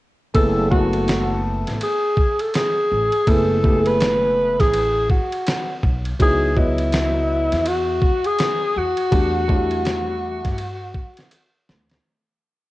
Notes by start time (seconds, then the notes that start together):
0.34 F#1 A3 B3 E4 G#4 A4, kick, ride
0.70 A3 B3 E4 F#4 G#4, kick
0.78 A4
0.93 ride
1.08 snare, hi-hat pedal, ride
1.67 A1, snare, ride
1.81 G#4, ride
2.17 kick
2.39 A4, ride
2.54 G#4, snare, hi-hat pedal, ride
2.91 A1
3.12 ride
3.27 F#1 A3 B3 E4 G#4 A4, kick, ride
3.63 A3 B3 E4 G4, kick
3.72 G#4
3.86 B4, ride
4.01 snare, hi-hat pedal, ride
4.60 A1 G#4, kick, snare, ride
4.74 ride
5.10 F#4, kick
5.32 ride
5.47 snare, hi-hat pedal, ride
5.83 B1, kick
6.05 ride
6.19 C#2 F#3 B3 D#4 E4 G#4, kick, ride
6.55 F#3 B3 E4 F#4 D#5, kick
6.78 ride
6.92 snare, hi-hat pedal, ride
7.52 E2, snare, ride
7.66 F#4, ride
8.02 kick
8.24 G#4, ride
8.39 snare, hi-hat pedal, ride
8.76 E2 F#4
8.97 ride
9.11 E2 G3 A3 D4 F#4, kick, ride
9.48 F#3 A3 D4 E4, kick
9.54 G3
9.71 ride
9.85 snare, hi-hat pedal, ride
10.45 G2, kick, snare, ride
10.58 ride
10.94 kick
11.17 snare, ride
11.31 hi-hat pedal, ride
11.69 D2, snare
11.90 snare, ride